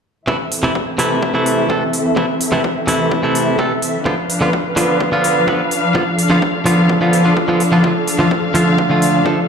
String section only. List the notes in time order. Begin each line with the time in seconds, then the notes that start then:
0.28 E3 C4 A4 E5
4.06 F3 D4 B4 F5
5.95 A4
7.84 F5